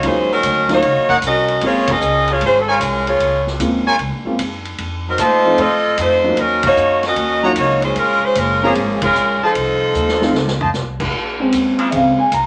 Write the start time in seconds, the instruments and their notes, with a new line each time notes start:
0.03 upright bass D#2, upright piano F#3 A#3 C#4 D#4 F4, saxophone section G#3 C#4 F4 C5, kick, ride
0.33 saxophone section F#3 C#4 D#4 A#4
0.43 upright bass D2, kick, hi-hat pedal, ride
0.68 upright piano F#3 A#3 C#4 D#4 F4, snare, ride
0.72 saxophone section A#3 D#4 F#4 C#5
0.82 upright bass C#2, kick, ride
0.96 upright bass A#1
1.08 upright bass F#1, trumpet section D#4 A#4 C#5 F#5, kick
1.22 upright bass C2, kick, hi-hat pedal, ride
1.26 saxophone section C#4 F#4 A#4 D#5
1.48 ride
1.61 upright bass A#1, upright piano G#3 A#3 C4 C#4 F4, kick, ride
1.66 saxophone section A#3 F4 G#4 C#5
1.87 kick, ride
1.92 saxophone section C#4 G#4 A#4 D#5
2.01 upright bass C#2, hi-hat pedal
2.28 saxophone section A#3 F4 C#5, ride
2.32 saxophone section G#4
2.41 upright bass G#1, saxophone section C#4, kick, ride
2.45 saxophone section G#3 F4 C5
2.60 saxophone section A4
2.67 saxophone section G#3 C#4 F4 A#4, trumpet section F4 A#4 C#5 G#5
2.80 upright bass C2, kick, hi-hat pedal, ride
3.07 saxophone section A#3 F4 G#4 C#5, ride
3.20 upright bass C#2, kick, ride
3.47 snare
3.59 upright bass D#2, upright piano G#3 A#3 C4 C#4 F4, kick, hi-hat pedal, ride
3.86 trumpet section F4 A#4 C#5 G#5
3.99 upright bass C#2, kick, ride
4.12 upright bass A#1
4.25 upright bass G#1, upright piano G#3 A#3 C4 C#4 F4
4.39 upright bass F#2, kick, hi-hat pedal, ride
4.65 ride
4.78 upright bass F2, kick, ride
5.08 saxophone section F#3 C4 D#4 A#4
5.18 upright bass A#2, saxophone section A3 D#4 F4 C5, trumpet section F4 C5 D#5 A5, kick, hi-hat pedal, ride
5.45 upright piano F3 A3 C4 D#4 F4
5.58 upright bass A2, saxophone section C4 F4 A4 D#5, kick, ride
5.97 upright bass F2, saxophone section A3 D#4 F4 C5, kick, hi-hat pedal, ride
6.24 upright piano F#3 A#3 C#4 D#4 F4
6.37 upright bass D#2, saxophone section F#3 C#4 D#4 A#4, kick, ride
6.63 saxophone section A#3 D#4 F#4 C#5, kick, ride
6.76 upright bass F#2, hi-hat pedal
7.03 saxophone section C#4, snare, ride
7.07 saxophone section F#4 A#4 D#5
7.16 upright bass D#2, kick, ride
7.42 upright piano F#3 A#3 C#4 D#4 F4, trumpet section F#4 C#5 D#5 A#5
7.56 upright bass C#2, saxophone section A#3 D#4 F#4 C#5, kick, hi-hat pedal, ride
7.82 saxophone section G#3 C#4 F4 C5, ride
7.96 upright bass A#1, saxophone section G#3 C#4 F4 A#4, kick, ride
8.22 saxophone section G#3 C#4 F4 C5, muted upright bass stroke
8.35 upright bass F#1, saxophone section G#3 C#4 F4 A#4, kick, hi-hat pedal, ride
8.62 saxophone section F3 A#3 C#4 G#4, upright piano G#3 A#3 C4 C#4 F4, trumpet section G#4 C#5 F5 A#5
8.75 upright bass G#1, kick, ride
9.02 saxophone section G#3 C#4 F4 A#4, kick, ride
9.15 upright bass A#1, hi-hat pedal
9.42 saxophone section F3 C4 D#4 A4, trumpet section F4 C5 D#5 A5, muted upright bass stroke
9.55 upright bass C2, kick, ride
9.94 upright bass D#2, hi-hat pedal
10.08 snare
10.21 upright piano F3 A3 C4 D#4 F4, snare
10.33 upright bass C#2, snare
10.48 snare
10.61 trumpet section F4 C5 D#5 A5, floor tom
10.73 upright bass C2, snare, hi-hat pedal
11.00 kick, crash
11.13 upright bass A#1, kick
11.40 upright piano G#3 C4 C#4
11.52 upright bass D#2, kick, hi-hat pedal, ride
11.78 trombone section C#3 G#3 A#3 F4, ride
11.91 upright bass C#2, upright piano C#3 G#3 C4 E5, kick, ride
11.96 upright piano F5
12.18 upright piano G#5, muted upright bass stroke
12.31 upright bass C2, upright piano A#5, kick, hi-hat pedal, ride